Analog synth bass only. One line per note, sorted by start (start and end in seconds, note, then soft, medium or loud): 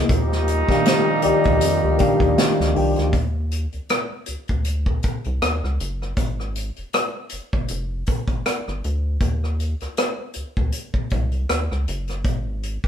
0.10 0.63 D#2 loud
1.25 1.33 D2 soft
1.47 1.60 D2 medium
1.63 1.81 F2 loud
1.84 1.98 D2 medium
2.21 2.36 D#2 medium
2.60 2.74 D2 medium
2.76 2.95 C2 loud
2.98 3.12 D2 medium
3.14 3.67 D#2 loud
3.74 3.80 D2 soft
4.28 4.37 D2 soft
4.50 4.98 D2 medium
5.05 5.13 C2 soft
5.26 5.40 C2 medium
5.42 5.61 D#2 medium
5.64 5.78 C#2 medium
5.80 6.14 F#1 medium
6.18 6.71 G#1 loud
6.78 6.84 G1 soft
7.33 7.41 G1 soft
7.54 7.68 G1 medium
7.70 8.04 F1 medium
8.28 8.43 G#1 medium
8.68 8.82 G1 medium
8.85 9.18 D2 medium
9.22 9.74 D#2 loud
9.82 9.88 D2 soft
10.36 10.44 D2 soft
10.58 10.72 D2 medium
11.13 11.46 C2 medium
11.50 11.69 D#2 medium
11.72 11.86 C#2 medium
11.88 12.27 F#1 loud
12.26 12.78 G#1 loud
12.85 12.88 G1 soft